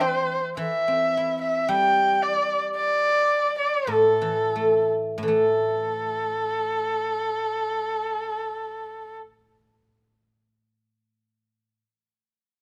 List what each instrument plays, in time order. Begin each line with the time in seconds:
Already playing: guzheng E3
0.01 pipa C4, erhu C5
0.57 guzheng E3, erhu E5
0.88 guzheng C4
1.17 guzheng E4
1.41 erhu E5
1.68 guzheng G3, erhu G5
2.22 erhu D5
2.75 erhu D5
3.58 erhu D5
3.87 guzheng A2, erhu A4
4.21 guzheng E3
4.56 guzheng A3
5.18 guzheng A2
5.23 guzheng E3
5.28 guzheng A3, erhu A4